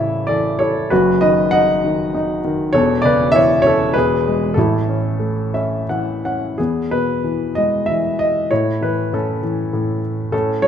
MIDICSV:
0, 0, Header, 1, 2, 480
1, 0, Start_track
1, 0, Key_signature, 3, "major"
1, 0, Tempo, 622407
1, 698, Time_signature, 3, 2, 24, 8
1, 1649, Tempo, 606061
1, 3569, Tempo, 634921
1, 4049, Tempo, 682594
1, 5025, Key_signature, 4, "major"
1, 5489, Tempo, 631579
1, 6449, Tempo, 607287
1, 8162, End_track
2, 0, Start_track
2, 0, Title_t, "Grand piano"
2, 0, Program_c, 0, 0
2, 0, Control_c, 0, 64, 127
2, 0, Note_on_c, 0, 33, 55
2, 0, Note_on_c, 0, 45, 55
2, 0, Note_on_c, 0, 49, 47
2, 0, Note_on_c, 0, 64, 47
2, 0, Note_on_c, 0, 69, 55
2, 0, Note_on_c, 0, 71, 51
2, 0, Note_on_c, 0, 73, 59
2, 0, Note_on_c, 0, 74, 68
2, 0, Note_on_c, 0, 76, 79
2, 177, Note_off_c, 0, 76, 0
2, 183, Note_off_c, 0, 73, 0
2, 207, Note_off_c, 0, 74, 0
2, 207, Note_on_c, 0, 74, 80
2, 223, Note_on_c, 0, 52, 50
2, 225, Note_off_c, 0, 69, 0
2, 225, Note_on_c, 0, 69, 56
2, 449, Note_off_c, 0, 69, 0
2, 453, Note_on_c, 0, 73, 80
2, 463, Note_on_c, 0, 69, 61
2, 464, Note_off_c, 0, 74, 0
2, 465, Note_off_c, 0, 64, 0
2, 476, Note_on_c, 0, 64, 51
2, 671, Note_off_c, 0, 45, 0
2, 672, Note_off_c, 0, 33, 0
2, 677, Note_off_c, 0, 49, 0
2, 683, Note_off_c, 0, 69, 0
2, 687, Note_off_c, 0, 52, 0
2, 697, Note_off_c, 0, 71, 0
2, 697, Note_on_c, 0, 71, 78
2, 699, Note_off_c, 0, 64, 0
2, 701, Note_off_c, 0, 73, 0
2, 705, Note_on_c, 0, 66, 67
2, 708, Control_c, 0, 64, 0
2, 711, Note_on_c, 0, 30, 60
2, 711, Note_on_c, 0, 42, 62
2, 841, Control_c, 0, 64, 127
2, 916, Note_off_c, 0, 71, 0
2, 920, Note_off_c, 0, 66, 0
2, 932, Note_on_c, 0, 75, 87
2, 939, Note_on_c, 0, 71, 65
2, 941, Note_on_c, 0, 51, 51
2, 1158, Note_off_c, 0, 71, 0
2, 1164, Note_on_c, 0, 78, 94
2, 1168, Note_off_c, 0, 75, 0
2, 1179, Note_on_c, 0, 63, 56
2, 1179, Note_on_c, 0, 75, 69
2, 1412, Note_off_c, 0, 51, 0
2, 1423, Note_on_c, 0, 51, 54
2, 1643, Note_off_c, 0, 63, 0
2, 1655, Note_on_c, 0, 63, 58
2, 1853, Note_off_c, 0, 78, 0
2, 1861, Note_off_c, 0, 75, 0
2, 1879, Note_off_c, 0, 51, 0
2, 1891, Note_on_c, 0, 51, 60
2, 2100, Note_off_c, 0, 30, 0
2, 2100, Note_off_c, 0, 42, 0
2, 2114, Note_off_c, 0, 63, 0
2, 2114, Note_on_c, 0, 73, 96
2, 2119, Note_off_c, 0, 51, 0
2, 2126, Note_on_c, 0, 40, 71
2, 2129, Note_on_c, 0, 28, 66
2, 2130, Note_on_c, 0, 69, 75
2, 2135, Control_c, 0, 64, 0
2, 2267, Control_c, 0, 64, 127
2, 2345, Note_on_c, 0, 74, 97
2, 2346, Note_off_c, 0, 69, 0
2, 2362, Note_off_c, 0, 73, 0
2, 2364, Note_on_c, 0, 49, 58
2, 2375, Note_on_c, 0, 71, 72
2, 2572, Note_off_c, 0, 74, 0
2, 2582, Note_on_c, 0, 76, 103
2, 2588, Note_off_c, 0, 71, 0
2, 2599, Note_on_c, 0, 52, 64
2, 2614, Note_on_c, 0, 73, 81
2, 2810, Note_off_c, 0, 73, 0
2, 2822, Note_on_c, 0, 73, 100
2, 2837, Note_off_c, 0, 76, 0
2, 2843, Note_on_c, 0, 61, 54
2, 2860, Note_on_c, 0, 69, 74
2, 3051, Note_off_c, 0, 28, 0
2, 3053, Note_off_c, 0, 40, 0
2, 3055, Note_off_c, 0, 73, 0
2, 3061, Note_off_c, 0, 49, 0
2, 3067, Note_off_c, 0, 52, 0
2, 3073, Note_on_c, 0, 71, 88
2, 3076, Note_off_c, 0, 61, 0
2, 3076, Note_off_c, 0, 69, 0
2, 3090, Note_on_c, 0, 40, 69
2, 3092, Control_c, 0, 64, 0
2, 3092, Note_on_c, 0, 28, 65
2, 3110, Note_on_c, 0, 68, 72
2, 3234, Control_c, 0, 64, 127
2, 3339, Note_on_c, 0, 56, 58
2, 3532, Note_off_c, 0, 71, 0
2, 3542, Note_off_c, 0, 28, 0
2, 3551, Note_off_c, 0, 68, 0
2, 3553, Note_on_c, 0, 69, 73
2, 3558, Note_off_c, 0, 40, 0
2, 3568, Note_off_c, 0, 56, 0
2, 3576, Control_c, 0, 64, 0
2, 3576, Note_on_c, 0, 45, 60
2, 3577, Note_on_c, 0, 33, 58
2, 3588, Note_on_c, 0, 64, 58
2, 3715, Control_c, 0, 64, 127
2, 3814, Note_on_c, 0, 61, 50
2, 4048, Note_on_c, 0, 57, 51
2, 4279, Note_off_c, 0, 61, 0
2, 4290, Note_on_c, 0, 61, 48
2, 4291, Note_on_c, 0, 76, 59
2, 4498, Note_off_c, 0, 69, 0
2, 4514, Note_off_c, 0, 64, 0
2, 4518, Note_off_c, 0, 76, 0
2, 4539, Note_on_c, 0, 78, 58
2, 4541, Note_on_c, 0, 52, 47
2, 4768, Note_off_c, 0, 78, 0
2, 4780, Note_off_c, 0, 61, 0
2, 4790, Note_on_c, 0, 61, 45
2, 4790, Note_on_c, 0, 78, 59
2, 4996, Note_off_c, 0, 57, 0
2, 5000, Note_off_c, 0, 45, 0
2, 5001, Note_off_c, 0, 33, 0
2, 5012, Note_off_c, 0, 78, 0
2, 5014, Note_off_c, 0, 52, 0
2, 5020, Note_on_c, 0, 68, 62
2, 5022, Note_off_c, 0, 61, 0
2, 5030, Note_on_c, 0, 40, 47
2, 5033, Note_on_c, 0, 59, 43
2, 5034, Control_c, 0, 64, 0
2, 5174, Control_c, 0, 64, 127
2, 5256, Note_on_c, 0, 71, 80
2, 5258, Note_on_c, 0, 47, 39
2, 5265, Note_off_c, 0, 68, 0
2, 5488, Note_on_c, 0, 52, 44
2, 5703, Note_off_c, 0, 59, 0
2, 5723, Note_on_c, 0, 75, 79
2, 5738, Note_on_c, 0, 56, 42
2, 5741, Note_off_c, 0, 71, 0
2, 5957, Note_on_c, 0, 76, 76
2, 5972, Note_off_c, 0, 52, 0
2, 5975, Note_off_c, 0, 75, 0
2, 5983, Note_on_c, 0, 52, 44
2, 6181, Note_off_c, 0, 47, 0
2, 6208, Note_on_c, 0, 75, 79
2, 6211, Note_off_c, 0, 76, 0
2, 6420, Note_off_c, 0, 40, 0
2, 6429, Note_off_c, 0, 75, 0
2, 6431, Note_off_c, 0, 56, 0
2, 6440, Note_off_c, 0, 52, 0
2, 6447, Note_on_c, 0, 73, 77
2, 6453, Note_on_c, 0, 64, 57
2, 6458, Control_c, 0, 64, 0
2, 6460, Note_on_c, 0, 45, 54
2, 6586, Control_c, 0, 64, 127
2, 6688, Note_on_c, 0, 52, 41
2, 6697, Note_off_c, 0, 73, 0
2, 6700, Note_on_c, 0, 71, 69
2, 6928, Note_off_c, 0, 45, 0
2, 6940, Note_on_c, 0, 45, 46
2, 6941, Note_off_c, 0, 71, 0
2, 6945, Note_on_c, 0, 61, 48
2, 6947, Note_on_c, 0, 69, 62
2, 7139, Note_off_c, 0, 64, 0
2, 7163, Note_off_c, 0, 52, 0
2, 7175, Note_on_c, 0, 52, 47
2, 7404, Note_off_c, 0, 45, 0
2, 7416, Note_on_c, 0, 45, 47
2, 7623, Note_off_c, 0, 61, 0
2, 7624, Note_off_c, 0, 69, 0
2, 7869, Note_off_c, 0, 52, 0
2, 7871, Note_off_c, 0, 45, 0
2, 7883, Note_on_c, 0, 45, 57
2, 7884, Note_on_c, 0, 69, 74
2, 7893, Note_on_c, 0, 61, 52
2, 7897, Control_c, 0, 64, 0
2, 8024, Control_c, 0, 64, 127
2, 8120, Note_on_c, 0, 54, 45
2, 8120, Note_on_c, 0, 73, 92
2, 8133, Note_off_c, 0, 69, 0
2, 8162, Note_off_c, 0, 45, 0
2, 8162, Note_off_c, 0, 54, 0
2, 8162, Note_off_c, 0, 61, 0
2, 8162, Note_off_c, 0, 73, 0
2, 8162, End_track
0, 0, End_of_file